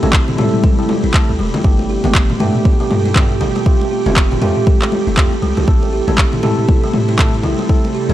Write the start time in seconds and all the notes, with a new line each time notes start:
Already playing: C3 G3 E4
0.03 A1 A3 C4 E4 A4, high conga, low conga
0.13 kick, clap, muted conga
0.28 E3, mid tom, low conga
0.38 A2 A3 C4 E4 G4 A4, muted conga, high conga
0.54 mid tom
0.64 A4, kick, muted conga, high conga
0.79 G3 A3 C4 E4 A4
0.89 high conga
1.04 A1 E4, muted conga
1.14 A3 C4 E4 A4, kick, clap
1.29 D2, muted conga
1.39 E1 G3, high conga
1.54 A3, muted conga, low conga
1.64 G1 B2 A3 B3 D4 G4, kick
1.79 muted conga
1.90 G4
2.04 G1 A3 B3 D4 G4, high conga, low conga
2.15 kick, clap, muted conga
2.30 E3, mid tom, low conga
2.40 G2 A3 B3 D4 G4, muted conga, high conga
2.55 mid tom
2.65 A4, kick, muted conga, high conga
2.80 G3 A3 B3 D4 G4
2.90 G2, high conga
3.06 E4, muted conga
3.16 A3 B3 D4 G4, kick, clap, low conga
3.32 muted conga
3.41 G1 G3, low conga
3.56 A3, muted conga
3.66 A3 C4 F4 G4, kick
3.81 muted conga
3.91 G4
4.06 F1 A3 C4 F4 G4, high conga, low conga
4.16 kick, clap, muted conga
4.31 E3, mid tom, low conga
4.42 F2 A3 C4 F4 G4, muted conga, high conga
4.57 mid tom
4.67 A4, kick, muted conga, high conga
4.82 G3 A3 C4 F4 G4, clap
4.92 high conga
5.07 F1 E4, muted conga
5.17 F2 A3 C4 F4 G4, kick, clap
5.33 muted conga
5.42 C2 G3, high conga
5.57 C2 A3, muted conga, low conga
5.67 A1 C3 A3 C4 E4 A4, kick
5.83 muted conga
5.93 G4
6.08 A1 A3 C4 E4 A4, high conga, low conga
6.18 kick, clap
6.33 E3, mid tom, low conga
6.43 A2 A3 C4 E4 G4 A4, muted conga, high conga
6.58 mid tom
6.69 A4, kick, muted conga, high conga
6.84 G3 A3 C4 E4 A4
6.94 A2, high conga
7.09 E4, muted conga
7.18 A3 C4 E4 A4, kick, clap, low conga
7.34 muted conga
7.43 A1 G3, low conga
7.59 A3, muted conga
7.69 A3 C4 D4 E4 A4, kick
7.85 muted conga
7.95 G4
8.09 A1 A3 C4 E4 A4, high conga, low conga